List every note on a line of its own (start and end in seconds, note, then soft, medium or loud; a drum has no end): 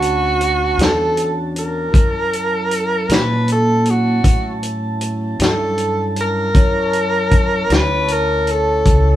0.00 0.75 D2 medium
0.00 1.90 C#4 medium
0.00 1.89 D4 medium
0.00 0.85 F#4 medium
0.00 1.90 F#4 medium
0.00 1.90 A5 medium
0.00 closed hi-hat medium
0.41 closed hi-hat medium
0.78 1.90 E2 medium
0.78 snare medium
0.78 closed hi-hat medium
0.83 1.31 A4 medium
1.17 closed hi-hat medium
1.56 3.16 A#4 medium
1.56 closed hi-hat medium
1.91 3.05 F#2 medium
1.91 6.50 F#3 medium
1.91 6.50 C#4 medium
1.91 6.50 E4 medium
1.91 6.50 A5 medium
1.91 kick medium
1.91 closed hi-hat medium
2.33 closed hi-hat soft
2.71 closed hi-hat medium
3.09 4.21 A#2 medium
3.09 snare loud
3.09 closed hi-hat medium
3.14 3.50 B4 medium
3.48 closed hi-hat medium
3.52 3.92 A4 medium
3.85 closed hi-hat medium
3.90 4.65 F#4 medium
4.24 5.36 A2 medium
4.24 kick medium
4.24 closed hi-hat medium
4.63 closed hi-hat medium
5.01 closed hi-hat medium
5.39 6.51 G2 medium
5.39 snare medium
5.39 closed hi-hat medium
5.45 6.15 A4 medium
5.78 closed hi-hat medium
6.16 closed hi-hat medium
6.21 7.76 A#4 medium
6.53 7.67 F#2 medium
6.53 9.16 C#4 medium
6.53 9.16 E4 medium
6.53 9.16 C#5 medium
6.53 9.16 A5 medium
6.53 kick medium
6.53 closed hi-hat medium
6.93 closed hi-hat medium
7.31 kick medium
7.31 closed hi-hat medium
7.70 8.82 D2 medium
7.70 snare medium
7.70 closed hi-hat medium
7.75 8.13 B4 loud
8.08 8.53 A#4 medium
8.08 closed hi-hat medium
8.47 closed hi-hat medium
8.51 9.16 A4 medium
8.85 9.16 C#2 medium
8.85 kick medium
8.85 closed hi-hat medium